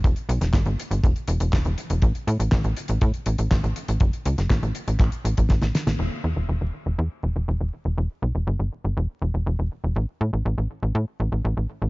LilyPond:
<<
  \new Staff \with { instrumentName = "Analog synth bass" } { \clef bass \time 4/4 \key e \minor \tempo 4 = 121 e,,16 r16 b,,16 e,,16 g,,16 g,,16 r16 g,,16 e,,16 r16 e,,16 e,,16 e,,16 e,,16 r16 e,,16 | a,,16 r16 a,16 a,,16 a,,16 a,,16 r16 a,,16 a,16 r16 a,,16 a,,16 a,,16 a,,16 r16 a,,16 | fis,,16 r16 cis,16 fis,,16 a,,16 a,,16 r16 a,,16 a,,16 r16 a,,16 a,,16 a,,16 a,,16 r16 a,,16 | e,,16 r16 e,16 e,,16 e,,16 e,,16 r16 e,,16 e,16 r16 e,,16 e,,16 e,,16 e,,16 r16 e,,16 |
e,,16 r16 b,,16 e,,16 g,,16 g,,16 r16 g,,16 e,,16 r16 e,,16 e,,16 e,,16 e,,16 r16 e,,16 | a,,16 r16 a,16 a,,16 a,,16 a,,16 r16 a,,16 a,16 r16 a,,16 a,,16 a,,16 a,,16 r16 a,,16 | }
  \new DrumStaff \with { instrumentName = "Drums" } \drummode { \time 4/4 <hh bd>16 hh16 hh16 <hh sn>16 <hc hh bd sn>16 hh16 hh16 hh16 <hh bd>16 hh16 hh16 hh16 <hc hh bd sn>16 hh16 hh16 hh16 | <hh bd>16 hh16 hh16 hh16 <hc hh bd sn>16 hh16 hh16 hh16 <hh bd>16 hh16 hh16 hh16 <hc hh bd sn>16 hh16 hh16 hh16 | <hh bd>16 hh16 hh16 <hh sn>16 <hc hh bd sn>16 hh16 hh16 hh16 <hc hh bd>16 hh16 hh16 <hh bd>16 <hh bd sn>16 <hh sn>16 <hh sn>16 <hh sn>16 | cymc4 r4 r4 r4 |
r4 r4 r4 r4 | r4 r4 r4 r4 | }
>>